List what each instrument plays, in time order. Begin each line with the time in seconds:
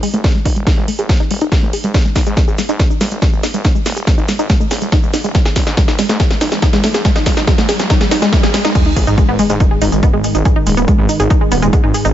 0.03 synth arpeggio sound G#3, open hi-hat
0.14 detuned saw bass G#1, synth arpeggio sound A3, closed hi-hat
0.24 synth arpeggio sound G#4, kick, snare, closed hi-hat
0.35 synth arpeggio sound G#3
0.45 detuned saw bass D#1, synth arpeggio sound D#4, kick, open hi-hat
0.56 detuned saw bass D#1, synth arpeggio sound G#3, closed hi-hat
0.67 synth arpeggio sound D#4, kick, snare, closed hi-hat
0.77 detuned saw bass G#1, synth arpeggio sound G#3
0.88 synth arpeggio sound A3, open hi-hat
0.99 detuned saw bass G#1, synth arpeggio sound G#4, closed hi-hat
1.09 synth arpeggio sound G#3, kick, snare, closed hi-hat
1.20 synth arpeggio sound D#4
1.31 detuned saw bass D#1, synth arpeggio sound G#3, open hi-hat
1.41 detuned saw bass D#1, synth arpeggio sound D#4, closed hi-hat
1.52 synth arpeggio sound G#3, kick, snare, closed hi-hat
1.63 detuned saw bass G#1, synth arpeggio sound A3
1.73 synth arpeggio sound G#4, open hi-hat
1.84 detuned saw bass G#1, synth arpeggio sound G#3, closed hi-hat
1.94 synth arpeggio sound D#4, kick, snare, closed hi-hat, riser, shaker
2.05 synth arpeggio sound G#3, shaker
2.16 detuned saw bass G#1, synth arpeggio sound D#4, kick, snare, open hi-hat, shaker
2.26 detuned saw bass G#2, synth arpeggio sound G#3, closed hi-hat, shaker
2.37 synth arpeggio sound A3, kick, snare, closed hi-hat, shaker
2.48 detuned saw bass G#1, synth arpeggio sound G#4, shaker
2.58 synth arpeggio sound G#3, snare, open hi-hat, shaker
2.69 detuned saw bass G#2, synth arpeggio sound D#4, closed hi-hat, shaker
2.79 synth arpeggio sound G#3, kick, snare, closed hi-hat, shaker
2.90 synth arpeggio sound D#4, shaker
3.01 detuned saw bass G#1, synth arpeggio sound G#3, snare, open hi-hat, shaker
3.11 detuned saw bass G#1, synth arpeggio sound A3, closed hi-hat, shaker
3.22 synth arpeggio sound G#4, kick, snare, closed hi-hat, shaker
3.33 detuned saw bass G#1, synth arpeggio sound G#3, shaker
3.43 synth arpeggio sound D#4, snare, open hi-hat, shaker
3.54 detuned saw bass G#1, synth arpeggio sound G#3, closed hi-hat, shaker
3.64 synth arpeggio sound D#4, kick, snare, closed hi-hat, shaker
3.75 synth arpeggio sound G#3, shaker
3.86 detuned saw bass D#1, synth arpeggio sound A3, snare, open hi-hat, shaker
3.96 detuned saw bass D#1, synth arpeggio sound G#4, closed hi-hat, shaker
4.07 synth arpeggio sound G#3, kick, snare, closed hi-hat, shaker
4.18 detuned saw bass G#1, synth arpeggio sound D#4, shaker
4.28 synth arpeggio sound G#3, snare, open hi-hat, shaker
4.39 detuned saw bass G#1, synth arpeggio sound D#4, closed hi-hat, shaker
4.50 synth arpeggio sound G#3, kick, snare, closed hi-hat, shaker
4.60 synth arpeggio sound A3, shaker
4.71 detuned saw bass D#1, synth arpeggio sound G#4, snare, open hi-hat, shaker
4.82 detuned saw bass D#1, synth arpeggio sound G#3, closed hi-hat, shaker
4.92 synth arpeggio sound D#4, kick, snare, closed hi-hat, shaker
5.03 detuned saw bass D#1, synth arpeggio sound G#3, shaker
5.14 synth arpeggio sound D#4, snare, open hi-hat, shaker
5.24 detuned saw bass D#1, synth arpeggio sound G#3, closed hi-hat, shaker
5.35 synth arpeggio sound A3, kick, snare, closed hi-hat, shaker
5.45 synth arpeggio sound G#4, snare, shaker
5.56 detuned saw bass G#1, synth arpeggio sound G#3, kick, snare, open hi-hat, shaker
5.67 detuned saw bass G#2, synth arpeggio sound D#4, snare, closed hi-hat, shaker
5.77 synth arpeggio sound G#3, kick, snare, closed hi-hat, shaker
5.88 detuned saw bass G#1, synth arpeggio sound D#4, snare, shaker
5.99 synth arpeggio sound G#3, snare, open hi-hat, shaker
6.09 detuned saw bass G#2, synth arpeggio sound A3, snare, closed hi-hat, shaker
6.20 synth arpeggio sound G#4, kick, snare, closed hi-hat, shaker
6.31 synth arpeggio sound G#3, snare, shaker
6.41 detuned saw bass G#1, synth arpeggio sound D#4, snare, open hi-hat, shaker
6.52 detuned saw bass G#1, synth arpeggio sound G#3, snare, closed hi-hat, shaker
6.62 synth arpeggio sound D#4, kick, snare, closed hi-hat, shaker
6.73 detuned saw bass G#1, synth arpeggio sound G#3, snare, shaker
6.84 synth arpeggio sound A3, snare, open hi-hat, shaker
6.94 detuned saw bass G#1, synth arpeggio sound G#4, snare, closed hi-hat, shaker
7.05 synth arpeggio sound G#3, kick, snare, closed hi-hat, shaker
7.16 synth arpeggio sound D#4, snare, shaker
7.26 synth arpeggio sound G#3, kick, snare, open hi-hat, shaker
7.37 synth arpeggio sound D#4, snare, closed hi-hat, shaker
7.47 synth arpeggio sound G#3, kick, snare, closed hi-hat, shaker
7.58 detuned saw bass G#1, synth arpeggio sound A3, snare, shaker
7.69 synth arpeggio sound G#4, snare, open hi-hat, shaker
7.79 detuned saw bass G#1, synth arpeggio sound G#3, snare, closed hi-hat, shaker
7.90 synth arpeggio sound D#4, kick, snare, closed hi-hat, shaker
8.01 synth arpeggio sound G#3, snare, shaker
8.11 synth arpeggio sound D#4, snare, open hi-hat, shaker
8.22 synth arpeggio sound G#3, snare, closed hi-hat, shaker
8.33 synth arpeggio sound A3, kick, snare, closed hi-hat, shaker
8.43 synth arpeggio sound G#4, snare, shaker
8.54 synth arpeggio sound G#3, snare, open hi-hat, shaker
8.65 detuned saw bass D#1, synth arpeggio sound D#4, snare, closed hi-hat, shaker
8.75 ambient pad G#2 D#3, synth arpeggio sound G#3, kick, closed hi-hat, crash, sub drop, shaker
8.86 synth arpeggio sound D#4
8.96 detuned saw bass G#1, synth arpeggio sound G#4, kick, open hi-hat, shaker
9.07 detuned saw bass G#2, synth arpeggio sound D#4, closed hi-hat, shaker
9.18 synth arpeggio sound G#3, kick, closed hi-hat, shaker
9.29 detuned saw bass G#1, synth arpeggio sound B3
9.39 synth arpeggio sound G#3, open hi-hat, shaker
9.50 detuned saw bass G#2, synth arpeggio sound G#3, closed hi-hat, shaker
9.60 synth arpeggio sound D#4, kick, closed hi-hat, shaker
9.71 synth arpeggio sound G#4
9.82 detuned saw bass G#1, synth arpeggio sound D#4, open hi-hat, shaker
9.92 detuned saw bass G#1, synth arpeggio sound G#3, closed hi-hat, shaker
10.03 synth arpeggio sound B3, kick, closed hi-hat, shaker
10.13 detuned saw bass G#1, synth arpeggio sound G#3
10.24 synth arpeggio sound G#3, open hi-hat, shaker
10.35 detuned saw bass G#1, synth arpeggio sound D#4, closed hi-hat, shaker
10.45 synth arpeggio sound G#4, kick, closed hi-hat, shaker
10.56 synth arpeggio sound D#4
10.67 detuned saw bass D#1, synth arpeggio sound G#3, open hi-hat, shaker
10.77 detuned saw bass D#1, synth arpeggio sound B3, closed hi-hat, shaker
10.88 synth arpeggio sound G#3, kick, closed hi-hat, shaker
10.99 detuned saw bass G#1, synth arpeggio sound G#3
11.09 synth arpeggio sound D#4, open hi-hat, shaker
11.20 detuned saw bass G#1, synth arpeggio sound G#4, closed hi-hat, shaker
11.30 synth arpeggio sound D#4, kick, closed hi-hat, shaker
11.41 synth arpeggio sound G#3
11.52 detuned saw bass D#1, synth arpeggio sound B3, open hi-hat, shaker
11.62 detuned saw bass D#1, synth arpeggio sound G#3, closed hi-hat, shaker
11.73 synth arpeggio sound G#3, kick, closed hi-hat, shaker
11.84 detuned saw bass G#1, synth arpeggio sound D#4
11.94 synth arpeggio sound G#4, open hi-hat, shaker
12.05 detuned saw bass G#1, synth arpeggio sound D#4, closed hi-hat, shaker